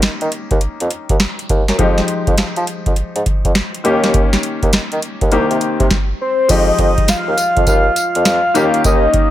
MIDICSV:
0, 0, Header, 1, 5, 480
1, 0, Start_track
1, 0, Key_signature, -4, "minor"
1, 0, Tempo, 588235
1, 1459, Time_signature, 4, 2, 24, 8
1, 7593, End_track
2, 0, Start_track
2, 0, Title_t, "Soft synth lead"
2, 0, Program_c, 0, 80
2, 5070, Note_on_c, 0, 72, 93
2, 5309, Note_on_c, 0, 75, 110
2, 5321, Note_off_c, 0, 72, 0
2, 5789, Note_on_c, 0, 77, 116
2, 5801, Note_off_c, 0, 75, 0
2, 6264, Note_off_c, 0, 77, 0
2, 6271, Note_on_c, 0, 77, 120
2, 7192, Note_off_c, 0, 77, 0
2, 7228, Note_on_c, 0, 75, 123
2, 7593, Note_off_c, 0, 75, 0
2, 7593, End_track
3, 0, Start_track
3, 0, Title_t, "Grand piano"
3, 0, Program_c, 1, 0
3, 0, Control_c, 1, 64, 127
3, 0, Note_on_c, 1, 51, 73
3, 0, Note_on_c, 1, 58, 66
3, 0, Note_on_c, 1, 61, 67
3, 0, Note_on_c, 1, 67, 80
3, 1184, Note_off_c, 1, 51, 0
3, 1187, Note_off_c, 1, 58, 0
3, 1190, Note_off_c, 1, 61, 0
3, 1193, Note_off_c, 1, 67, 0
3, 1456, Note_on_c, 1, 53, 71
3, 1461, Note_on_c, 1, 56, 61
3, 1468, Control_c, 1, 64, 0
3, 1469, Note_on_c, 1, 63, 68
3, 1475, Note_on_c, 1, 67, 72
3, 1593, Control_c, 1, 64, 127
3, 3105, Note_off_c, 1, 53, 0
3, 3107, Note_off_c, 1, 56, 0
3, 3111, Note_off_c, 1, 63, 0
3, 3114, Note_off_c, 1, 67, 0
3, 3133, Note_on_c, 1, 51, 66
3, 3138, Note_on_c, 1, 58, 64
3, 3145, Note_on_c, 1, 61, 67
3, 3149, Control_c, 1, 64, 0
3, 3152, Note_on_c, 1, 67, 78
3, 3277, Control_c, 1, 64, 127
3, 4312, Note_off_c, 1, 51, 0
3, 4315, Note_off_c, 1, 58, 0
3, 4318, Note_off_c, 1, 61, 0
3, 4321, Note_off_c, 1, 67, 0
3, 4340, Note_on_c, 1, 51, 68
3, 4343, Note_on_c, 1, 58, 67
3, 4345, Note_on_c, 1, 60, 65
3, 4350, Control_c, 1, 64, 0
3, 4350, Note_on_c, 1, 67, 76
3, 4499, Control_c, 1, 64, 127
3, 4819, Note_off_c, 1, 51, 0
3, 4821, Note_off_c, 1, 58, 0
3, 4822, Note_off_c, 1, 60, 0
3, 4824, Note_off_c, 1, 67, 0
3, 4828, Control_c, 1, 64, 0
3, 5292, Note_on_c, 1, 53, 64
3, 5298, Note_on_c, 1, 56, 53
3, 5305, Note_on_c, 1, 63, 56
3, 5311, Note_on_c, 1, 67, 69
3, 5446, Control_c, 1, 64, 127
3, 6943, Note_off_c, 1, 53, 0
3, 6946, Note_off_c, 1, 56, 0
3, 6949, Note_off_c, 1, 63, 0
3, 6952, Note_off_c, 1, 67, 0
3, 6971, Note_on_c, 1, 51, 81
3, 6979, Note_on_c, 1, 58, 71
3, 6986, Note_on_c, 1, 61, 78
3, 6988, Control_c, 1, 64, 0
3, 6992, Note_on_c, 1, 67, 85
3, 7140, Control_c, 1, 64, 127
3, 7593, Note_off_c, 1, 51, 0
3, 7593, Note_off_c, 1, 58, 0
3, 7593, Note_off_c, 1, 61, 0
3, 7593, Note_off_c, 1, 67, 0
3, 7593, End_track
4, 0, Start_track
4, 0, Title_t, "Bassoon"
4, 0, Program_c, 2, 70
4, 21, Note_on_c, 2, 51, 42
4, 82, Note_off_c, 2, 51, 0
4, 174, Note_on_c, 2, 51, 92
4, 235, Note_off_c, 2, 51, 0
4, 415, Note_on_c, 2, 39, 83
4, 475, Note_off_c, 2, 39, 0
4, 657, Note_on_c, 2, 41, 90
4, 717, Note_off_c, 2, 41, 0
4, 893, Note_on_c, 2, 39, 81
4, 954, Note_off_c, 2, 39, 0
4, 1221, Note_on_c, 2, 39, 89
4, 1331, Note_off_c, 2, 39, 0
4, 1376, Note_on_c, 2, 42, 76
4, 1436, Note_off_c, 2, 42, 0
4, 1460, Note_on_c, 2, 41, 96
4, 1632, Note_off_c, 2, 41, 0
4, 1853, Note_on_c, 2, 41, 91
4, 1915, Note_off_c, 2, 41, 0
4, 1941, Note_on_c, 2, 53, 42
4, 2002, Note_off_c, 2, 53, 0
4, 2094, Note_on_c, 2, 53, 98
4, 2155, Note_off_c, 2, 53, 0
4, 2335, Note_on_c, 2, 41, 71
4, 2396, Note_off_c, 2, 41, 0
4, 2574, Note_on_c, 2, 44, 80
4, 2635, Note_off_c, 2, 44, 0
4, 2813, Note_on_c, 2, 41, 79
4, 2875, Note_off_c, 2, 41, 0
4, 3139, Note_on_c, 2, 39, 99
4, 3483, Note_off_c, 2, 39, 0
4, 3774, Note_on_c, 2, 39, 94
4, 3835, Note_off_c, 2, 39, 0
4, 3860, Note_on_c, 2, 51, 41
4, 3922, Note_off_c, 2, 51, 0
4, 4015, Note_on_c, 2, 51, 91
4, 4076, Note_off_c, 2, 51, 0
4, 4254, Note_on_c, 2, 39, 81
4, 4315, Note_off_c, 2, 39, 0
4, 4340, Note_on_c, 2, 36, 103
4, 4450, Note_off_c, 2, 36, 0
4, 4496, Note_on_c, 2, 48, 93
4, 4556, Note_off_c, 2, 48, 0
4, 4733, Note_on_c, 2, 48, 92
4, 4794, Note_off_c, 2, 48, 0
4, 5300, Note_on_c, 2, 41, 104
4, 5471, Note_off_c, 2, 41, 0
4, 5536, Note_on_c, 2, 41, 100
4, 5648, Note_off_c, 2, 41, 0
4, 5936, Note_on_c, 2, 39, 89
4, 5996, Note_off_c, 2, 39, 0
4, 6174, Note_on_c, 2, 41, 88
4, 6235, Note_off_c, 2, 41, 0
4, 6258, Note_on_c, 2, 39, 96
4, 6430, Note_off_c, 2, 39, 0
4, 6654, Note_on_c, 2, 41, 86
4, 6715, Note_off_c, 2, 41, 0
4, 6739, Note_on_c, 2, 41, 95
4, 6850, Note_off_c, 2, 41, 0
4, 6979, Note_on_c, 2, 39, 102
4, 7090, Note_off_c, 2, 39, 0
4, 7219, Note_on_c, 2, 39, 111
4, 7391, Note_off_c, 2, 39, 0
4, 7593, End_track
5, 0, Start_track
5, 0, Title_t, "Drums"
5, 18, Note_on_c, 9, 42, 84
5, 21, Note_on_c, 9, 38, 107
5, 99, Note_off_c, 9, 42, 0
5, 103, Note_off_c, 9, 38, 0
5, 172, Note_on_c, 9, 42, 51
5, 253, Note_off_c, 9, 42, 0
5, 260, Note_on_c, 9, 42, 79
5, 341, Note_off_c, 9, 42, 0
5, 414, Note_on_c, 9, 36, 87
5, 414, Note_on_c, 9, 42, 48
5, 496, Note_off_c, 9, 36, 0
5, 496, Note_off_c, 9, 42, 0
5, 497, Note_on_c, 9, 42, 76
5, 579, Note_off_c, 9, 42, 0
5, 656, Note_on_c, 9, 42, 57
5, 737, Note_off_c, 9, 42, 0
5, 739, Note_on_c, 9, 42, 72
5, 820, Note_off_c, 9, 42, 0
5, 893, Note_on_c, 9, 36, 86
5, 893, Note_on_c, 9, 42, 56
5, 974, Note_off_c, 9, 36, 0
5, 974, Note_off_c, 9, 42, 0
5, 978, Note_on_c, 9, 38, 124
5, 979, Note_on_c, 9, 42, 73
5, 1059, Note_off_c, 9, 38, 0
5, 1061, Note_off_c, 9, 42, 0
5, 1135, Note_on_c, 9, 42, 49
5, 1216, Note_off_c, 9, 42, 0
5, 1220, Note_on_c, 9, 36, 94
5, 1220, Note_on_c, 9, 42, 70
5, 1301, Note_off_c, 9, 36, 0
5, 1301, Note_off_c, 9, 42, 0
5, 1374, Note_on_c, 9, 38, 64
5, 1374, Note_on_c, 9, 42, 51
5, 1456, Note_off_c, 9, 38, 0
5, 1456, Note_off_c, 9, 42, 0
5, 1459, Note_on_c, 9, 36, 118
5, 1459, Note_on_c, 9, 42, 83
5, 1541, Note_off_c, 9, 36, 0
5, 1541, Note_off_c, 9, 42, 0
5, 1613, Note_on_c, 9, 38, 65
5, 1615, Note_on_c, 9, 42, 47
5, 1694, Note_off_c, 9, 38, 0
5, 1696, Note_off_c, 9, 42, 0
5, 1697, Note_on_c, 9, 42, 73
5, 1779, Note_off_c, 9, 42, 0
5, 1853, Note_on_c, 9, 36, 90
5, 1854, Note_on_c, 9, 42, 50
5, 1935, Note_off_c, 9, 36, 0
5, 1936, Note_off_c, 9, 42, 0
5, 1938, Note_on_c, 9, 42, 90
5, 1942, Note_on_c, 9, 38, 117
5, 2020, Note_off_c, 9, 42, 0
5, 2023, Note_off_c, 9, 38, 0
5, 2092, Note_on_c, 9, 42, 58
5, 2174, Note_off_c, 9, 42, 0
5, 2181, Note_on_c, 9, 42, 77
5, 2263, Note_off_c, 9, 42, 0
5, 2334, Note_on_c, 9, 36, 85
5, 2335, Note_on_c, 9, 42, 48
5, 2416, Note_off_c, 9, 36, 0
5, 2417, Note_off_c, 9, 42, 0
5, 2418, Note_on_c, 9, 42, 71
5, 2499, Note_off_c, 9, 42, 0
5, 2576, Note_on_c, 9, 42, 50
5, 2657, Note_off_c, 9, 42, 0
5, 2660, Note_on_c, 9, 36, 86
5, 2661, Note_on_c, 9, 42, 69
5, 2741, Note_off_c, 9, 36, 0
5, 2743, Note_off_c, 9, 42, 0
5, 2813, Note_on_c, 9, 36, 81
5, 2814, Note_on_c, 9, 42, 54
5, 2894, Note_off_c, 9, 36, 0
5, 2896, Note_off_c, 9, 42, 0
5, 2898, Note_on_c, 9, 38, 124
5, 2899, Note_on_c, 9, 42, 75
5, 2979, Note_off_c, 9, 38, 0
5, 2981, Note_off_c, 9, 42, 0
5, 3056, Note_on_c, 9, 42, 48
5, 3138, Note_off_c, 9, 42, 0
5, 3140, Note_on_c, 9, 42, 66
5, 3221, Note_off_c, 9, 42, 0
5, 3293, Note_on_c, 9, 38, 71
5, 3293, Note_on_c, 9, 42, 52
5, 3375, Note_off_c, 9, 38, 0
5, 3375, Note_off_c, 9, 42, 0
5, 3378, Note_on_c, 9, 36, 124
5, 3378, Note_on_c, 9, 42, 86
5, 3460, Note_off_c, 9, 36, 0
5, 3460, Note_off_c, 9, 42, 0
5, 3533, Note_on_c, 9, 38, 70
5, 3535, Note_on_c, 9, 42, 46
5, 3615, Note_off_c, 9, 38, 0
5, 3617, Note_off_c, 9, 42, 0
5, 3617, Note_on_c, 9, 42, 71
5, 3699, Note_off_c, 9, 42, 0
5, 3773, Note_on_c, 9, 36, 83
5, 3775, Note_on_c, 9, 42, 50
5, 3855, Note_off_c, 9, 36, 0
5, 3857, Note_off_c, 9, 42, 0
5, 3858, Note_on_c, 9, 42, 87
5, 3861, Note_on_c, 9, 38, 113
5, 3939, Note_off_c, 9, 42, 0
5, 3943, Note_off_c, 9, 38, 0
5, 4012, Note_on_c, 9, 42, 53
5, 4094, Note_off_c, 9, 42, 0
5, 4100, Note_on_c, 9, 42, 76
5, 4182, Note_off_c, 9, 42, 0
5, 4254, Note_on_c, 9, 36, 84
5, 4254, Note_on_c, 9, 42, 47
5, 4335, Note_off_c, 9, 36, 0
5, 4336, Note_off_c, 9, 42, 0
5, 4338, Note_on_c, 9, 42, 74
5, 4419, Note_off_c, 9, 42, 0
5, 4495, Note_on_c, 9, 42, 54
5, 4576, Note_off_c, 9, 42, 0
5, 4578, Note_on_c, 9, 42, 66
5, 4660, Note_off_c, 9, 42, 0
5, 4732, Note_on_c, 9, 36, 89
5, 4733, Note_on_c, 9, 42, 53
5, 4814, Note_off_c, 9, 36, 0
5, 4815, Note_off_c, 9, 42, 0
5, 4819, Note_on_c, 9, 36, 104
5, 4819, Note_on_c, 9, 38, 87
5, 4900, Note_off_c, 9, 36, 0
5, 4900, Note_off_c, 9, 38, 0
5, 5298, Note_on_c, 9, 36, 120
5, 5298, Note_on_c, 9, 42, 84
5, 5298, Note_on_c, 9, 49, 104
5, 5298, Note_on_c, 9, 54, 71
5, 5379, Note_off_c, 9, 42, 0
5, 5379, Note_off_c, 9, 49, 0
5, 5379, Note_off_c, 9, 54, 0
5, 5380, Note_off_c, 9, 36, 0
5, 5536, Note_on_c, 9, 36, 93
5, 5537, Note_on_c, 9, 42, 79
5, 5618, Note_off_c, 9, 36, 0
5, 5618, Note_off_c, 9, 42, 0
5, 5693, Note_on_c, 9, 36, 93
5, 5694, Note_on_c, 9, 42, 56
5, 5775, Note_off_c, 9, 36, 0
5, 5776, Note_off_c, 9, 42, 0
5, 5778, Note_on_c, 9, 42, 86
5, 5780, Note_on_c, 9, 54, 104
5, 5781, Note_on_c, 9, 38, 123
5, 5859, Note_off_c, 9, 42, 0
5, 5861, Note_off_c, 9, 54, 0
5, 5863, Note_off_c, 9, 38, 0
5, 6018, Note_on_c, 9, 54, 74
5, 6020, Note_on_c, 9, 42, 82
5, 6100, Note_off_c, 9, 54, 0
5, 6102, Note_off_c, 9, 42, 0
5, 6174, Note_on_c, 9, 36, 85
5, 6174, Note_on_c, 9, 42, 49
5, 6255, Note_off_c, 9, 36, 0
5, 6255, Note_off_c, 9, 42, 0
5, 6256, Note_on_c, 9, 42, 70
5, 6257, Note_on_c, 9, 36, 98
5, 6259, Note_on_c, 9, 54, 71
5, 6338, Note_off_c, 9, 36, 0
5, 6338, Note_off_c, 9, 42, 0
5, 6340, Note_off_c, 9, 54, 0
5, 6497, Note_on_c, 9, 42, 75
5, 6497, Note_on_c, 9, 54, 68
5, 6579, Note_off_c, 9, 42, 0
5, 6579, Note_off_c, 9, 54, 0
5, 6652, Note_on_c, 9, 42, 56
5, 6733, Note_off_c, 9, 42, 0
5, 6735, Note_on_c, 9, 38, 120
5, 6737, Note_on_c, 9, 42, 82
5, 6739, Note_on_c, 9, 54, 87
5, 6817, Note_off_c, 9, 38, 0
5, 6818, Note_off_c, 9, 42, 0
5, 6821, Note_off_c, 9, 54, 0
5, 6977, Note_on_c, 9, 42, 72
5, 6979, Note_on_c, 9, 54, 72
5, 7059, Note_off_c, 9, 42, 0
5, 7061, Note_off_c, 9, 54, 0
5, 7131, Note_on_c, 9, 42, 50
5, 7213, Note_off_c, 9, 42, 0
5, 7217, Note_on_c, 9, 42, 84
5, 7217, Note_on_c, 9, 54, 71
5, 7218, Note_on_c, 9, 36, 124
5, 7298, Note_off_c, 9, 42, 0
5, 7298, Note_off_c, 9, 54, 0
5, 7299, Note_off_c, 9, 36, 0
5, 7455, Note_on_c, 9, 36, 102
5, 7455, Note_on_c, 9, 42, 81
5, 7536, Note_off_c, 9, 42, 0
5, 7537, Note_off_c, 9, 36, 0
5, 7593, End_track
0, 0, End_of_file